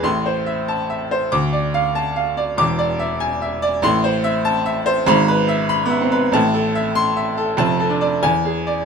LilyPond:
<<
  \new Staff \with { instrumentName = "Grand piano" } { \time 2/4 \key a \minor \tempo 4 = 95 << { c'''8 r4. | d'''8 r4. | d'''8 r4. | c'''8 r4. |
b''8 r4. | r4 c'''8 r8 | a''8 r8 gis''8 r8 | } \\ { \tuplet 3/2 { r8 c''8 e''8 a''8 e''8 c''8 } | \tuplet 3/2 { r8 d''8 f''8 a''8 f''8 d''8 } | \tuplet 3/2 { r8 d''8 e''8 gis''8 e''8 d''8 } | \tuplet 3/2 { r8 c''8 e''8 a''8 e''8 c''8 } |
\tuplet 3/2 { r8 b'8 e''8 b''8 e''8 b'8 } | \tuplet 3/2 { a''8 a'8 e''8~ e''8 e''8 a'8 } | \tuplet 3/2 { r8 a'8 d''8 r8 gis'8 d''8 } | } >> }
  \new Staff \with { instrumentName = "Grand piano" } { \clef bass \time 2/4 \key a \minor <a,, a,>2 | d,2 | <e,, e,>2 | <a,, a,>2 |
<gis,, gis,>4~ <gis,, gis,>16 b16 c'16 r16 | <a,, a,>2 | <f,, f,>8 d'8 e,4 | }
>>